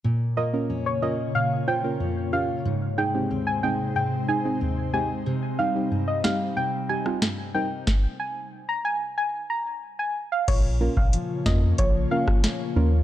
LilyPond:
<<
  \new Staff \with { instrumentName = "Synth pluck" } { \time 4/4 \key bes \dorian \tempo 4 = 92 r8 ees''16 r8 des''16 ees''16 r16 f''16 r16 g''16 r8. f''16 r16 | r8 g''16 r8 aes''16 g''16 r16 g''16 r16 aes''16 r8. aes''16 r16 | r8 f''16 r8 ees''16 f''16 r16 g''16 r16 aes''16 r8. g''16 r16 | r8 aes''16 r8 bes''16 aes''16 r16 aes''16 r16 bes''16 r8 aes''16 r16 f''16 |
des''8 r16 f''16 r8 ees''16 r16 des''16 r16 f''16 r4 r16 | }
  \new Staff \with { instrumentName = "Synth stab" } { \time 4/4 \key bes \dorian << { r8 <f' bes'>16 <bes des' f' bes'>16 r8 <bes des' f' bes'>16 r8. <f' c''>16 <bes des' f' bes'>16 r8 <bes des' f' g'>16 r16 | r8 <ees' aes'>16 <aes c' ees' g'>16 r8 <aes c' ees' aes'>16 r8. <ees' aes'>16 <aes c' ees' aes'>16 r8 <aes c' ees' g'>16 r16 | r8 <ees' g'>16 <g c' ees' g'>16 r8 <g c' ees' g'>16 r8. <ees' g'>16 <g c' ees' f'>16 r8 <g c' ees' bes'>16 r16 | r1 |
r8 <bes des' f' bes'>16 r8. <bes des' f' bes'>16 r8. <bes des' f' bes'>16 r8. <bes des' f' bes'>16 r16 | } \\ { bes,4 f,4 bes,4 f,4 | aes,4 ees,4 aes,4 ees,4 | c4 g,4 c4 g,4 | r1 |
r1 | } >> }
  \new Staff \with { instrumentName = "Ambient pad" } { \time 4/4 \key bes \dorian << { <des des''>1 | <c c''>1~ | <c c''>1 | r1 |
<des des''>1 | } \\ { <bes f'>1 | <aes ees'>1 | <g ees'>1 | r1 |
<bes f'>1 | } >> }
  \new Staff \with { instrumentName = "Steel-string acoustic guitar" } { \time 4/4 \key bes \dorian bes,8 bes8 des'8 bes8 des'8 f'8 des'8 f'8 | aes,8 aes8 c'8 aes8 c'8 ees'8 c'8 ees'8 | c8 g8 c'8 g8 c'8 ees'8 c'8 ees'8 | r1 |
bes,8 bes8 f8 bes8 f8 des'8 bes8 f8 | }
  \new Staff \with { instrumentName = "Sub bass" } { \clef bass \time 4/4 \key bes \dorian r1 | r1 | r1 | r1 |
bes,,8. bes,,16 r8 f,8 bes,,8 r4 ees,8 | }
  \new DrumStaff \with { instrumentName = "Drums" } \drummode { \time 4/4 r4 r4 r4 r4 | r4 r4 r4 r4 | r4 r8 sn8 r8. ss16 sn4 | <bd sn>4 r4 r4 r4 |
<cymc hh bd>8. bd16 hh8 <bd sn>8 <hh bd>8. <bd ss>16 <hh sn>4 | }
>>